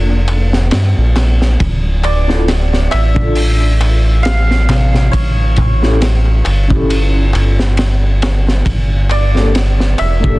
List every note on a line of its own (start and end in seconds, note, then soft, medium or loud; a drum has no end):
0.00 0.72 F1 medium
0.00 1.57 A#3 medium
0.00 1.58 D4 medium
0.00 1.59 F4 medium
0.00 1.60 A4 medium
0.00 0.32 F5 medium
0.09 darbuka tek soft
0.28 ride medium
0.28 darbuka tek medium
0.53 snare medium
0.53 darbuka tek soft
0.71 0.94 G2 medium
0.71 snare loud
0.71 ride medium
0.71 darbuka tek medium
0.98 1.57 A#1 loud
1.16 snare medium
1.16 ride medium
1.16 darbuka tek loud
1.41 snare soft
1.41 darbuka tek soft
1.60 2.89 D1 loud
1.60 kick loud
1.60 ride medium
1.60 darbuka tek soft
2.04 4.51 D5 medium
2.04 ride medium
2.04 darbuka tek loud
2.27 2.39 D4 medium
2.27 2.40 E4 medium
2.27 2.40 F4 medium
2.27 2.41 A4 loud
2.27 snare soft
2.27 darbuka tek soft
2.48 snare loud
2.48 ride medium
2.48 darbuka tek soft
2.73 snare medium
2.73 darbuka tek soft
2.91 5.10 A1 medium
2.91 5.21 E5 loud
2.91 ride medium
2.91 darbuka tek medium
3.14 5.09 D4 medium
3.14 kick medium
3.14 darbuka tek soft
3.19 5.12 F4 medium
3.19 5.13 A4 medium
3.35 open hi-hat medium
3.35 darbuka tek medium
3.61 darbuka tek soft
3.81 ride medium
3.81 darbuka tek medium
4.05 darbuka tek soft
4.23 6.45 F5 loud
4.23 snare loud
4.23 ride medium
4.23 darbuka tek medium
4.51 snare soft
4.69 snare soft
4.69 ride medium
4.69 darbuka tek loud
4.69 darbuka dum medium
4.93 snare soft
4.93 darbuka tek soft
4.93 darbuka dum medium
5.12 6.42 A1 loud
5.12 8.17 C#5 medium
5.12 kick loud
5.12 ride loud
5.12 darbuka tek medium
5.56 kick medium
5.56 ride medium
5.56 darbuka tek medium
5.82 5.93 C#4 medium
5.82 5.93 E4 medium
5.82 5.94 G4 medium
5.82 5.95 A4 loud
5.82 snare soft
5.82 darbuka tek soft
6.01 snare loud
6.01 ride medium
6.01 darbuka tek soft
6.25 darbuka tek soft
6.45 7.34 G1 medium
6.45 ride medium
6.45 darbuka tek medium
6.68 8.63 C#4 medium
6.68 8.64 E4 medium
6.68 kick loud
6.68 darbuka tek soft
6.72 8.65 G4 medium
6.72 8.66 A4 medium
6.90 ride medium
6.90 darbuka tek soft
7.14 darbuka tek soft
7.33 8.63 G1 medium
7.33 ride medium
7.33 darbuka tek medium
7.59 snare medium
7.59 darbuka tek soft
7.77 snare loud
7.77 ride medium
7.77 darbuka tek soft
8.22 snare medium
8.22 ride medium
8.22 darbuka tek medium
8.47 snare soft
8.47 darbuka tek soft
8.65 9.95 G1 loud
8.65 kick loud
8.65 ride medium
8.65 darbuka tek soft
9.10 10.39 D5 loud
9.10 ride medium
9.10 darbuka tek medium
9.34 9.45 A#3 medium
9.34 9.46 D4 medium
9.34 9.47 G4 medium
9.34 9.47 A4 loud
9.34 snare soft
9.34 darbuka tek soft
9.55 snare loud
9.55 ride medium
9.55 darbuka tek soft
9.79 snare medium
9.79 darbuka tek soft
9.98 10.39 F1 medium
9.98 10.39 E5 loud
9.98 ride medium
9.98 darbuka tek medium
10.20 10.39 A#3 medium
10.20 10.39 D4 medium
10.20 kick medium
10.20 darbuka tek soft
10.24 10.39 G4 medium
10.24 10.39 A4 medium